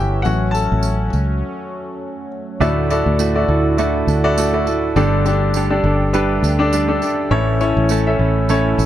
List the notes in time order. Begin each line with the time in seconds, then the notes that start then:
Already playing: G1 E3 A3 C#4 E4 F#4 G4 A4 C#5 E5 F#5 G5 A5
0.22 A1 F#3 A3 C#4 F#4 F#5, tambourine
0.51 A4 A5, tambourine
0.72 A1
0.83 tambourine
1.13 C#2, tambourine
2.59 D2 A2 D3 A3 D4 E4 F#4 A4 D5, tambourine
2.90 E4 F#4 A4 D5, tambourine
3.06 D2
3.19 A3 E4 F#4 A4, tambourine
3.35 E4 F#4 A4 D5
3.48 D2 E4 F#4 A4
3.78 D3 A3 E4 F#4 A4 D5, tambourine
4.07 D2 E4 F#4 A4, tambourine
4.24 E4 F#4 A4 D5
4.38 A3 E4 F#4 A4, tambourine
4.53 E4 F#4 A4 D5
4.66 E4 F#4 A4, tambourine
4.95 G1 G2 D3 G3 A3 D4 G4 A4 D5, tambourine
5.25 D4 G4 A4 D5, tambourine
5.54 G3 D4 G4 A4, tambourine
5.70 D4 G4 A4 D5
5.84 G1 D4 G4 A4
6.13 G3 D4 G4 A4 B4, tambourine
6.43 D2 D4 G4 A4, tambourine
6.59 D4 G4 A4 D5
6.73 G3 D4 G4 A4, tambourine
6.88 D4 G4 A4 D5
7.02 D4 G4 A4, tambourine
7.31 A1 A2 E3 A3 C#4 E4 A4 C#5
7.61 A3 C#4 E4 A4 C#5, tambourine
7.77 A1
7.89 A3 C#4 E4 A4, tambourine
8.07 C#4 E4 A4 E5
8.19 A1 A3 C#4 E4 A4
8.49 A2 E3 A3 C#4 E4 A4 C#5, tambourine
8.77 A1 A3 C#4 E4 A4, tambourine